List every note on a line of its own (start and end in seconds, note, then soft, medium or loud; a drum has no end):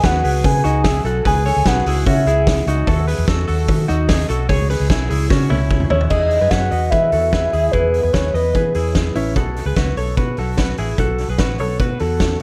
0.03 0.21 D#2 loud
0.03 0.24 G#4 medium
0.03 0.23 B4 medium
0.03 0.45 F#5 loud
0.03 kick loud
0.03 snare loud
0.03 hi-hat pedal medium
0.03 open hi-hat medium
0.24 0.41 C#2 medium
0.24 0.62 G#4 medium
0.24 0.62 B4 medium
0.24 hi-hat pedal medium
0.24 open hi-hat medium
0.44 0.61 C#3 medium
0.44 1.02 G#5 loud
0.44 kick loud
0.44 hi-hat pedal medium
0.44 open hi-hat medium
0.64 0.99 C#2 loud
0.64 0.85 D#4 medium
0.64 0.84 F#4 medium
0.64 hi-hat pedal medium
0.64 open hi-hat medium
0.84 1.05 E4 soft
0.84 1.05 G#4 medium
0.84 kick loud
0.84 snare loud
0.84 hi-hat pedal medium
0.84 open hi-hat medium
1.04 1.22 B1 loud
1.04 1.26 F#4 medium
1.04 1.25 A4 medium
1.04 hi-hat pedal medium
1.04 open hi-hat medium
1.25 1.51 C#2 loud
1.25 1.46 G#4 medium
1.25 1.45 B4 loud
1.25 1.68 G#5 loud
1.25 kick loud
1.25 hi-hat pedal medium
1.25 open hi-hat medium
1.45 1.66 A4 medium
1.45 1.66 C#5 medium
1.45 hi-hat pedal medium
1.45 open hi-hat medium
1.56 1.65 C#2 loud
1.65 1.83 B1 loud
1.65 1.86 G#4 medium
1.65 1.86 B4 medium
1.65 2.09 F#5 loud
1.65 kick loud
1.65 snare loud
1.65 hi-hat pedal medium
1.65 open hi-hat medium
1.86 2.03 C#2 medium
1.86 2.07 E4 medium
1.86 2.06 G#4 medium
1.86 hi-hat pedal medium
1.86 open hi-hat medium
2.06 2.23 C#3 loud
2.06 2.27 C#4 medium
2.06 2.27 F#4 medium
2.06 2.67 E5 medium
2.06 kick loud
2.06 hi-hat pedal medium
2.06 open hi-hat medium
2.26 2.60 C#2 medium
2.26 2.65 E4 medium
2.26 2.65 G#4 medium
2.26 hi-hat pedal medium
2.26 open hi-hat medium
2.47 kick loud
2.47 snare loud
2.47 hi-hat pedal medium
2.47 open hi-hat medium
2.67 2.84 C#2 loud
2.67 2.88 D#4 medium
2.67 2.87 F#4 medium
2.67 hi-hat pedal medium
2.67 open hi-hat medium
2.87 3.13 D#2 loud
2.87 3.08 F#4 medium
2.87 3.07 A4 loud
2.87 kick loud
2.87 hi-hat pedal medium
2.87 open hi-hat medium
3.08 3.28 G#4 medium
3.08 3.27 B4 medium
3.08 hi-hat pedal medium
3.08 open hi-hat medium
3.18 3.27 E2 loud
3.27 3.45 E2 medium
3.27 3.47 F#4 medium
3.27 3.46 A4 medium
3.27 kick loud
3.27 snare loud
3.27 hi-hat pedal medium
3.27 open hi-hat medium
3.48 3.65 D#2 medium
3.48 3.86 F#4 medium
3.48 3.86 A4 medium
3.48 hi-hat pedal medium
3.48 open hi-hat medium
3.68 3.85 D#3 medium
3.68 kick loud
3.68 hi-hat pedal medium
3.68 open hi-hat medium
3.88 4.23 D#2 medium
3.88 4.08 D#4 medium
3.88 4.08 F#4 medium
3.88 hi-hat pedal medium
3.88 open hi-hat medium
4.09 4.29 D#4 medium
4.09 4.29 G#4 medium
4.09 kick loud
4.09 snare loud
4.09 hi-hat pedal medium
4.09 open hi-hat medium
4.29 4.46 B1 medium
4.29 4.49 F#4 medium
4.29 4.49 A4 medium
4.29 hi-hat pedal medium
4.29 open hi-hat medium
4.49 4.75 C#2 loud
4.49 4.69 G#4 medium
4.49 4.69 C#5 loud
4.49 kick loud
4.49 hi-hat pedal medium
4.49 open hi-hat medium
4.70 4.89 G#4 medium
4.70 4.90 B4 medium
4.70 hi-hat pedal medium
4.70 open hi-hat medium
4.80 4.88 C#2 medium
4.90 5.07 B1 medium
4.90 5.09 E4 medium
4.90 5.08 G#4 medium
4.90 kick loud
4.90 snare loud
4.90 hi-hat pedal medium
4.90 open hi-hat medium
5.10 5.27 C#2 medium
5.10 5.30 E4 medium
5.10 5.30 G#4 medium
5.10 hi-hat pedal medium
5.10 open hi-hat medium
5.30 5.47 C#3 medium
5.30 5.50 C#4 medium
5.30 5.50 F#4 medium
5.30 kick loud
5.30 snare medium
5.50 5.85 C#2 medium
5.50 5.89 C#4 medium
5.50 5.88 E4 medium
5.50 high tom medium
5.71 kick loud
5.80 mid tom medium
5.90 6.08 D#2 medium
5.90 6.11 C#4 medium
5.90 6.10 E4 medium
5.90 6.00 C#5 loud
5.90 floor tom medium
6.01 floor tom medium
6.10 6.37 E2 medium
6.10 6.40 E4 medium
6.10 6.40 G#4 medium
6.10 6.51 D#5 loud
6.10 kick loud
6.10 crash medium
6.31 open hi-hat medium
6.41 6.50 F#2 medium
6.41 6.51 G#4 medium
6.41 6.50 B4 medium
6.50 6.69 F#2 medium
6.50 6.72 G#4 medium
6.50 6.71 B4 medium
6.50 6.92 F#5 loud
6.50 kick loud
6.50 snare loud
6.50 closed hi-hat medium
6.71 6.89 E2 medium
6.71 6.91 B4 medium
6.71 6.92 D#5 medium
6.71 open hi-hat medium
6.90 7.13 E3 medium
6.90 7.13 G#4 medium
6.90 7.12 B4 medium
6.90 7.73 E5 loud
6.90 kick loud
6.90 closed hi-hat medium
7.12 7.47 E2 medium
7.12 7.33 F#4 medium
7.12 7.33 A4 medium
7.12 open hi-hat medium
7.33 7.52 G#4 medium
7.33 7.53 B4 medium
7.33 kick loud
7.33 snare medium
7.33 closed hi-hat medium
7.53 7.70 D#2 medium
7.53 7.73 E4 medium
7.53 7.72 G#4 medium
7.53 open hi-hat medium
7.71 7.99 E2 medium
7.71 8.02 E4 medium
7.71 8.02 G#4 loud
7.71 8.14 B4 medium
7.71 kick medium
7.71 closed hi-hat medium
7.94 open hi-hat medium
8.03 8.12 E2 medium
8.03 8.13 G#4 medium
8.03 8.12 B4 medium
8.13 8.31 D#2 medium
8.13 8.34 G#4 medium
8.13 8.34 B4 medium
8.13 8.35 C#5 loud
8.13 kick loud
8.13 snare loud
8.13 closed hi-hat medium
8.34 8.51 E2 medium
8.34 8.95 B4 medium
8.34 8.54 B4 medium
8.34 8.55 D#5 medium
8.34 open hi-hat medium
8.55 8.72 E3 medium
8.55 8.74 G#4 medium
8.55 8.75 B4 medium
8.55 kick loud
8.55 closed hi-hat medium
8.74 9.09 E2 medium
8.74 9.14 E4 medium
8.74 9.13 G#4 medium
8.74 open hi-hat medium
8.95 kick medium
8.95 snare loud
8.95 closed hi-hat medium
9.15 9.36 A1 medium
9.15 9.36 C#4 medium
9.15 9.36 E4 medium
9.15 open hi-hat medium
9.36 9.62 B1 medium
9.36 9.65 F#4 medium
9.36 9.65 A4 medium
9.36 kick loud
9.36 closed hi-hat medium
9.56 open hi-hat medium
9.66 9.75 C#2 medium
9.66 9.77 G#4 medium
9.66 9.76 B4 medium
9.76 9.94 C#2 medium
9.76 9.97 F#4 medium
9.76 9.97 B4 medium
9.76 kick loud
9.76 snare loud
9.76 closed hi-hat medium
9.97 10.14 B1 medium
9.97 10.18 A4 medium
9.97 10.17 C#5 medium
9.97 open hi-hat medium
10.17 10.35 B2 medium
10.17 10.38 F#4 medium
10.17 10.38 B4 medium
10.17 kick loud
10.17 closed hi-hat medium
10.37 10.72 B1 medium
10.37 10.58 F#4 medium
10.37 10.58 A4 medium
10.37 open hi-hat medium
10.57 10.78 F#4 medium
10.57 10.78 B4 medium
10.57 kick loud
10.57 snare loud
10.57 closed hi-hat medium
10.77 10.96 A1 medium
10.77 10.99 E4 medium
10.77 10.99 G#4 medium
10.77 open hi-hat medium
10.98 11.24 B1 medium
10.98 11.28 F#4 medium
10.98 11.28 A4 loud
10.98 kick medium
10.98 closed hi-hat medium
11.18 open hi-hat medium
11.28 11.39 B1 medium
11.28 11.40 G#4 soft
11.28 11.38 B4 medium
11.38 11.60 A1 medium
11.38 11.60 F#4 medium
11.38 11.59 B4 medium
11.38 kick loud
11.38 snare loud
11.38 closed hi-hat medium
11.59 11.77 B1 medium
11.59 11.80 A4 medium
11.59 11.80 C#5 medium
11.59 open hi-hat medium
11.80 11.97 B2 medium
11.80 12.00 F#4 medium
11.80 12.00 B4 medium
11.80 kick loud
11.80 closed hi-hat medium
11.99 12.35 E2 medium
11.99 12.39 F#4 medium
11.99 12.38 A4 medium
11.99 open hi-hat medium
12.20 kick loud
12.20 snare loud
12.20 closed hi-hat medium